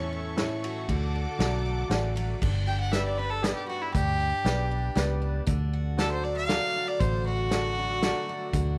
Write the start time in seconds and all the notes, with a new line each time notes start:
Already playing: E2 A2 E3 C#4 E4 A4 C#5 E5 C#6
0.13 E4
0.36 A2 E4 A4 C#5, snare, ride
0.64 F#4, ride
0.89 D2 D3 F#4 A4 F#5 D6, kick, ride
1.15 D4
1.38 B1 F#3 A3 F#4 A4 D5, snare, ride
1.66 D4
1.89 A1 E3 F#4 A4 D5, snare, ride
2.16 F#3, ride
2.42 G1 G2 D4, kick, crash
2.67 G4 G5
2.80 F#5
2.91 G3 G4 B4 D5 E5, snare, closed hi-hat
3.06 D5
3.18 D4 B4
3.30 A4
3.42 G3 B3 G4 G#4 B4 D5, snare, closed hi-hat
3.55 G4
3.68 D4 F#4
3.82 E4
3.93 D2 G2 D4 G4, kick, closed hi-hat
4.20 D4
4.45 B1 G3 G4 B4 D5, snare, closed hi-hat
4.71 D4
4.95 C#2 G3 B3 G4 B4 D5, snare, closed hi-hat
5.22 D4
5.47 D2 D3 D4, kick, closed hi-hat
5.73 F#4
5.97 F#3 F#4 A4 D5, snare, closed hi-hat
6.11 C5
6.24 D4 D5
6.36 F5
6.48 F#3 A3 F#4 A4 D5, snare, closed hi-hat
6.76 D4
6.88 D5
7.00 A1 D3 D4 C5, kick, closed hi-hat
7.26 D4 F#4
7.51 F#3 F#4 A4 D5, snare, closed hi-hat
7.79 D4
8.02 F#3 A3 F#4 A4 D5, snare, closed hi-hat
8.29 D4
8.53 D2 D3 D4, kick, closed hi-hat